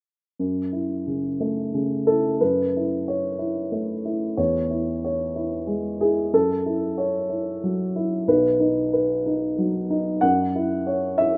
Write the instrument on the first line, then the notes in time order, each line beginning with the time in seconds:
upright piano
0.39 F#2
0.73 E4
1.07 C#3
1.40 A3
1.74 C#3
2.07 E4 A4
2.41 F#2 B4
2.77 E4
3.08 C#5
3.39 E4
3.72 A3
4.05 E4
4.37 E2 C#5
4.70 E4
5.05 C#5
5.36 E4
5.67 G#3
6.01 E4 G#4
6.33 F#2 A4
6.66 E4
6.98 C#5
7.29 E4
7.64 F#3
7.96 E4
8.28 B1 B4
8.60 D#4
8.93 B4
9.26 D#4
9.58 F#3
9.90 D#4
10.21 F#2 F#5
10.55 E4
10.87 C#5
11.18 E4 E5